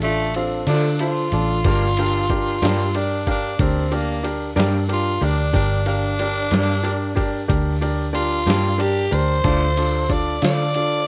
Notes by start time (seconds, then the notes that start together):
Already playing: A1
0.02 A3 D4 F4 A4 D5, ride
0.34 C4 D4 F4 A4 F5, ride
0.67 D3 F3 A3 D4 F4 A4 D5, ride
0.99 D4 F4 A4 C5, ride
1.32 A1 D4 F4 A4 D5, ride
1.64 G1 G2 G3 A#3 D4 G4 A#4 D5, kick, ride
1.97 D4 G4 A#4 F5, ride
2.30 D4 G4 A#4 D5, kick, ride
2.62 G2 G3 A#3 D4 G4 A#4 D5, snare, ride
2.95 D4 G4 A#4 D5, ride
3.27 D4 G4 A#4 F5, kick, ride
3.59 D2 C4 D4 G4 A#4 D5, kick, ride
3.91 A#3 D4 G4 A#4 D5, ride
4.23 D4 G4 A#4 D5, ride
4.56 G2 G3 A#3 D4 G4 A#4 D5, snare, ride
4.88 D4 G4 A#4 D5, ride
4.93 F4
5.21 D2 D4 G4 A#4 D5, ride
5.53 G1 D4 G4 A#4 D5, kick, ride
5.86 D4 G4 A#4 F5, ride
6.19 D4 G4 A#4 D5, ride
6.51 G2 G3 A#3 D4 G4 A#4 D5, snare, ride
6.83 D4 G4 A#4 D5, ride
7.15 D4 G4 A#4 D5, kick, ride
7.48 D2 D4 G4 A#4 D5, kick, ride
7.81 D4 G4 A#4 D5, ride
8.13 D4 F4 G4 A#4 D5, ride
8.46 G2 G3 A#3 D4 G4 A#4 D5, snare, ride
8.78 D4 G4 A#4 D5, ride
9.11 D2 D4 G4 A#4 C5 D5, ride
9.44 D2 D3 F3 A3 D4 F4 A4 D5, kick, ride
9.77 D4 F4 A4 D5, ride
10.09 D4 F4 A4 D5, kick, ride
10.42 D3 F3 A3 D4 F4 A4 D5 F5, snare, ride
10.74 D4 F4 A4 D5, ride